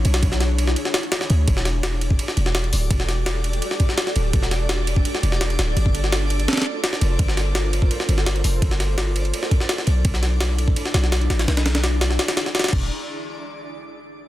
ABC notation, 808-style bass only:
X:1
M:4/4
L:1/8
Q:1/4=168
K:Em
V:1 name="808-style bass" clef=bass
B,,,4 z3 D,, | E,,,4 z E,,,2 D,,, | E,,,4 z3 D,,, | E,,,4 z E,,,2 D,,, |
G,,,4 z3 =F,,, | G,,,4 z G,,,2 =F,,, | G,,,4 z3 B,,, | B,,,4 z B,,,2 A,,, |
B,,,4 z3 E,,, | z8 |]